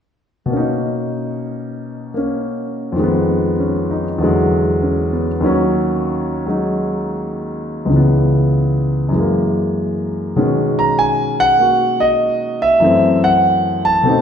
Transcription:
0.46 2.95 B2 soft
0.46 2.13 A#3 soft
0.53 2.16 C#4 soft
0.53 3.00 D#4 soft
2.14 2.96 A#3 soft
2.14 2.98 C#4 soft
2.92 4.18 F2 soft
2.92 4.20 D#3 soft
2.99 4.22 G#3 soft
2.99 4.23 B3 medium
3.60 4.07 C#4 soft
3.91 4.33 D#4 soft
4.18 5.43 E2 soft
4.18 5.44 D3 soft
4.18 5.43 F#3 soft
4.24 5.45 G#3 medium
4.83 5.30 C#4 soft
5.13 5.56 B3 soft
5.41 7.89 D#2 medium
5.41 7.90 D#3 soft
5.41 6.45 F#3 soft
5.46 7.91 C#4 medium
6.46 7.90 F#3 soft
6.46 7.91 G#3 soft
6.46 7.91 D#4 soft
7.85 9.11 C#2 soft
7.85 9.13 C#3 soft
7.92 9.10 E3 soft
7.92 9.16 B3 soft
9.09 10.34 F#2 soft
9.09 10.36 E3 soft
9.16 10.35 G#3 soft
9.16 10.40 A#3 soft
10.36 12.82 B2 soft
10.36 12.83 D#3 soft
10.36 12.82 G#3 soft
10.36 12.83 C#4 soft
10.79 10.99 A#5 medium
10.99 11.37 G#5 medium
11.40 12.03 F#5 loud
11.58 12.82 A#3 soft
11.58 12.83 F#4 soft
12.00 12.64 D#5 medium
12.62 13.20 E5 medium
12.80 14.04 F#2 soft
12.80 14.05 E3 soft
12.80 14.04 A3 soft
12.85 14.05 C4 medium
13.24 13.81 F#5 medium
13.85 14.21 A5 medium
14.03 14.21 B2 soft
14.03 14.21 A3 soft
14.03 14.21 C4 soft
14.08 14.21 D#4 medium

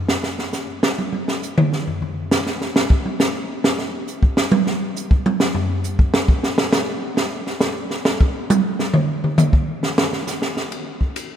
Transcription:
0.08 snare medium
0.23 snare soft
0.39 snare soft
0.53 snare soft
0.53 hi-hat pedal medium
0.83 snare medium
0.98 high tom soft
1.13 high tom soft
1.28 snare medium
1.43 hi-hat pedal medium
1.58 mid tom loud
1.73 snare soft
1.87 floor tom soft
2.02 floor tom soft
2.31 snare medium
2.31 hi-hat pedal soft
2.46 snare soft
2.61 snare soft
2.76 snare medium
2.90 kick medium
3.05 high tom soft
3.20 snare medium
3.20 hi-hat pedal medium
3.64 snare medium
3.79 snare soft
4.07 hi-hat pedal medium
4.23 kick medium
4.37 snare medium
4.52 high tom loud
4.67 snare soft
4.96 hi-hat pedal medium
5.11 kick medium
5.26 high tom medium
5.40 snare medium
5.55 floor tom medium
5.84 hi-hat pedal soft
5.99 kick medium
6.14 snare loud
6.28 kick medium
6.43 snare medium
6.58 snare loud
6.73 snare loud
6.73 hi-hat pedal medium
7.17 snare medium
7.47 snare soft
7.61 snare loud
7.61 hi-hat pedal soft
7.91 snare soft
8.05 snare loud
8.21 kick medium
8.50 hi-hat pedal medium
8.50 high tom loud
8.79 snare medium
8.94 mid tom medium
9.24 mid tom soft
9.38 hi-hat pedal medium
9.38 mid tom loud
9.53 kick medium
9.83 snare medium
9.98 snare loud
10.13 snare soft
10.27 snare soft
10.27 hi-hat pedal medium
10.42 snare medium
10.57 snare soft
10.72 ride soft
11.01 kick soft
11.16 hi-hat pedal soft
11.16 ride medium

